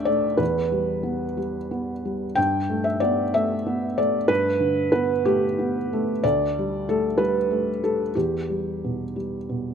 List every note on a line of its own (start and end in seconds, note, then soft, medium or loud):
0.00 0.36 D2 medium
0.00 0.07 A3 medium
0.00 0.42 D4 medium
0.00 0.05 D5 loud
0.00 0.43 E5 loud
0.00 0.42 G5 loud
0.05 0.40 A3 soft
0.05 0.39 D5 medium
0.37 2.32 E2 medium
0.37 1.37 B4 medium
0.72 1.24 G3 soft
1.03 1.57 B3 soft
1.37 1.91 G3 soft
1.71 2.24 B3 soft
2.05 2.37 G3 soft
2.35 4.26 G2 medium
2.35 2.85 G5 medium
2.70 3.22 A3 soft
2.84 3.01 E5 medium
3.00 3.54 B3 soft
3.00 3.34 D5 medium
3.34 3.86 A3 soft
3.34 3.98 E5 medium
3.66 4.17 B3 soft
3.98 4.49 A3 soft
3.98 4.30 D5 medium
4.28 6.19 G2 medium
4.28 4.90 B4 medium
4.60 5.11 D3 soft
4.92 5.43 B3 soft
4.92 5.24 B4 medium
5.25 5.77 A3 soft
5.25 6.24 G4 medium
5.59 6.11 B3 soft
5.93 6.25 A3 soft
6.24 8.11 D2 medium
6.24 6.87 D5 medium
6.59 7.07 G3 soft
6.89 7.38 A3 soft
6.89 7.19 A4 medium
7.18 7.69 G3 soft
7.18 7.81 B4 medium
7.51 8.02 A3 soft
7.83 8.15 G3 soft
7.83 8.15 A4 medium
8.15 9.74 E2 soft
8.15 9.15 G4 medium
8.50 9.02 G3 soft
8.84 9.35 B2 soft
9.16 9.69 G3 soft
9.49 9.74 B2 soft